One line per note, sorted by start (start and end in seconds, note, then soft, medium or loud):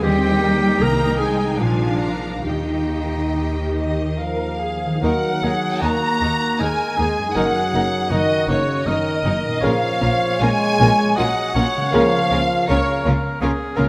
0.03 0.79 D#2 medium
0.03 0.84 D#3 medium
0.03 0.79 G3 medium
0.03 0.41 C4 medium
0.03 0.83 G4 medium
0.03 0.79 D#5 medium
0.03 0.79 G5 medium
0.29 0.54 D#4 soft
0.42 0.81 A#3 medium
0.55 1.32 D#4 soft
0.55 0.84 A#4 soft
0.80 1.60 C2 medium
0.80 1.64 C3 medium
0.80 1.20 A#3 medium
0.80 1.60 D#4 medium
0.80 1.20 A#4 medium
0.80 1.58 G5 medium
0.80 1.20 A#5 medium
1.07 1.63 G3 soft
1.19 1.60 G#3 medium
1.19 1.61 G#4 medium
1.19 1.60 G#5 medium
1.33 1.63 D#4 soft
1.33 1.64 C5 soft
1.59 2.43 A#1 medium
1.59 2.48 A#2 medium
1.59 2.44 F3 medium
1.59 2.44 D4 medium
1.59 2.14 F4 medium
1.59 2.45 F5 medium
1.59 2.02 G#5 medium
1.88 2.74 A#3 soft
2.01 2.44 A#5 soft
2.16 2.48 D4 soft
2.16 2.49 G#4 soft
2.44 4.82 D#2 soft
2.44 4.15 D#3 soft
2.44 4.85 D#3 soft
2.44 4.14 D#4 soft
2.44 3.22 G4 soft
2.44 4.19 D#5 soft
2.44 3.73 G5 soft
2.75 4.75 A#3 soft
3.04 4.94 D#4 soft
3.31 4.13 G4 soft
3.31 3.90 G4 soft
3.63 4.18 A#4 soft
3.75 4.15 D#3 soft
3.75 4.15 D#5 soft
3.75 4.19 D#5 soft
3.91 4.47 G4 soft
4.18 5.03 F3 soft
4.18 4.61 A#4 soft
4.18 4.98 A#4 soft
4.18 5.03 F5 medium
4.48 5.07 G4 soft
4.61 5.03 G#4 soft
4.77 4.89 A#3 soft
4.86 7.31 D#3 medium
4.91 7.22 A#3 soft
4.95 7.27 D#4 soft
5.00 5.10 D#2 medium
5.00 5.11 D#2 medium
5.00 5.82 F#3 medium
5.00 5.10 A#3 medium
5.00 5.09 D#4 medium
5.00 7.31 A#4 soft
5.00 5.45 A#4 medium
5.00 5.32 A#4 soft
5.00 5.84 F#5 medium
5.04 5.33 D#3 medium
5.04 5.12 D#4 medium
5.04 5.12 A#4 medium
5.04 5.82 F#5 medium
5.42 5.50 D#2 medium
5.42 5.51 D#2 soft
5.42 5.51 A#3 soft
5.42 5.51 D#4 soft
5.42 5.52 D#4 soft
5.42 5.83 G#4 medium
5.42 5.52 A#4 soft
5.81 5.90 D#2 medium
5.81 5.91 D#2 soft
5.81 5.90 A#3 soft
5.81 6.60 A#3 medium
5.81 5.89 D#4 soft
5.81 5.92 D#4 medium
5.81 6.62 F#4 medium
5.81 5.92 A#4 medium
5.81 6.63 A#5 medium
5.81 6.61 A#5 medium
6.21 6.30 D#2 medium
6.21 6.29 A#3 soft
6.21 6.30 D#4 soft
6.21 6.32 D#4 soft
6.21 6.31 A#4 soft
6.58 6.68 D#2 medium
6.58 6.69 D#2 medium
6.58 7.37 G#3 medium
6.58 6.67 A#3 medium
6.58 6.66 D#4 medium
6.58 6.99 A#4 medium
6.58 7.37 G#5 medium
6.62 6.70 D#4 soft
6.62 6.71 A#4 soft
6.97 7.06 D#2 medium
6.97 7.07 D#2 medium
6.97 7.05 A#3 soft
6.97 7.05 D#4 soft
6.97 7.07 D#4 soft
6.97 8.12 G#4 medium
6.97 7.07 A#4 soft
7.19 9.57 F#2 soft
7.23 9.49 A#3 soft
7.28 9.62 D#4 soft
7.32 7.44 F#1 medium
7.32 7.44 F#2 medium
7.32 7.43 A#3 medium
7.32 7.43 D#4 medium
7.32 9.58 A#4 soft
7.32 7.63 A#4 medium
7.32 7.44 A#4 medium
7.32 8.11 F#5 medium
7.32 8.10 F#5 medium
7.37 7.64 D#3 medium
7.37 8.11 F#3 medium
7.37 7.45 D#4 medium
7.74 7.82 F#1 medium
7.74 7.82 F#2 soft
7.74 7.82 A#3 soft
7.74 7.82 D#4 soft
7.74 7.83 D#4 medium
7.74 7.84 A#4 soft
8.10 8.19 F#1 medium
8.10 8.20 F#2 medium
8.10 8.49 D#3 medium
8.10 8.19 A#3 medium
8.10 8.19 D#4 medium
8.10 8.20 D#4 medium
8.10 8.88 F#4 medium
8.10 8.20 A#4 medium
8.10 8.48 D#5 medium
8.10 8.50 D#5 medium
8.47 8.56 F#1 medium
8.47 8.57 F#2 medium
8.47 8.87 C#3 medium
8.47 8.55 A#3 soft
8.47 8.56 D#4 soft
8.47 8.59 D#4 soft
8.47 8.58 A#4 soft
8.47 8.88 C#5 medium
8.47 8.86 C#5 medium
8.85 8.94 F#1 medium
8.85 8.95 F#2 medium
8.85 9.61 D#3 medium
8.85 8.94 A#3 medium
8.85 8.94 D#4 medium
8.85 8.95 D#4 medium
8.85 9.60 A#4 medium
8.85 8.96 A#4 medium
8.85 9.62 D#5 medium
8.85 9.64 D#5 medium
9.24 9.32 F#1 medium
9.24 9.33 F#2 medium
9.24 9.32 A#3 soft
9.24 9.32 D#4 soft
9.24 9.34 D#4 medium
9.24 9.35 A#4 soft
9.45 11.88 A#2 medium
9.50 11.80 A#3 soft
9.55 11.84 C#4 soft
9.59 9.70 A#1 medium
9.59 9.71 A#2 medium
9.59 9.91 C#3 medium
9.59 10.40 F3 medium
9.59 9.70 A#3 medium
9.59 9.70 C#4 medium
9.59 11.89 A#4 soft
9.59 11.17 C#5 medium
9.59 10.40 F5 medium
9.59 10.13 F5 medium
9.63 9.72 F4 medium
9.63 9.91 A#4 medium
9.63 9.72 A#4 medium
10.01 10.10 A#1 medium
10.01 10.09 A#2 medium
10.01 10.09 A#3 medium
10.01 10.09 C#4 medium
10.01 10.11 F4 soft
10.01 10.10 A#4 medium
10.40 10.49 A#1 medium
10.40 10.49 A#2 medium
10.40 11.17 G#3 medium
10.40 10.50 A#3 medium
10.40 10.49 C#4 medium
10.40 10.49 F4 medium
10.40 10.50 A#4 medium
10.40 11.17 G#5 loud
10.40 11.19 G#5 medium
10.79 10.88 A#1 medium
10.79 10.87 A#2 medium
10.79 10.88 A#3 medium
10.79 10.88 C#4 medium
10.79 10.88 F4 medium
10.79 10.88 A#4 medium
11.16 11.26 A#1 medium
11.16 11.25 A#2 medium
11.16 11.75 F#3 medium
11.16 11.26 A#3 medium
11.16 11.26 C#4 medium
11.16 11.26 F4 medium
11.16 11.25 A#4 medium
11.16 11.54 D#5 medium
11.16 11.94 F#5 medium
11.16 11.93 F#5 medium
11.54 11.64 A#1 medium
11.54 11.64 A#2 medium
11.54 11.64 A#3 medium
11.54 11.63 C#4 medium
11.54 11.64 F4 medium
11.54 11.64 A#4 medium
11.54 12.40 C#5 medium
11.77 13.89 C#3 medium
11.81 13.89 A#3 medium
11.86 13.89 C#4 medium
11.90 12.21 C#3 medium
11.90 12.02 C#3 medium
11.90 12.66 F3 medium
11.90 12.02 A#3 medium
11.90 12.02 C#4 medium
11.90 12.01 F4 medium
11.90 13.89 A#4 medium
11.90 12.01 A#4 medium
11.90 12.70 F5 medium
11.90 12.68 F5 medium
11.95 12.03 C#2 medium
11.95 12.21 A#4 medium
12.31 12.39 C#2 medium
12.31 12.40 C#3 medium
12.31 12.39 A#3 medium
12.31 12.39 C#4 medium
12.31 12.40 F4 medium
12.31 12.39 A#4 medium
12.68 12.77 C#2 medium
12.68 13.04 C#3 medium
12.68 12.77 C#3 medium
12.68 12.77 A#3 medium
12.68 12.78 C#4 medium
12.68 12.76 F4 medium
12.68 13.38 A#4 medium
12.68 12.77 A#4 medium
12.68 13.04 C#5 medium
12.68 13.05 C#5 medium
13.05 13.14 C#2 medium
13.05 13.14 C#3 medium
13.05 13.13 A#3 medium
13.05 13.14 C#4 medium
13.05 13.14 F4 medium
13.05 13.14 A#4 medium
13.41 13.49 C#2 medium
13.41 13.49 C#3 medium
13.41 13.49 A#3 medium
13.41 13.50 C#4 medium
13.41 13.50 F4 medium
13.41 13.78 G#4 medium
13.41 13.51 A#4 medium
13.76 13.86 C#2 medium
13.76 13.86 C#3 medium
13.76 13.86 A#3 medium
13.76 13.86 C#4 medium
13.76 13.85 F4 medium
13.76 13.84 A#4 medium
13.76 13.89 A#4 medium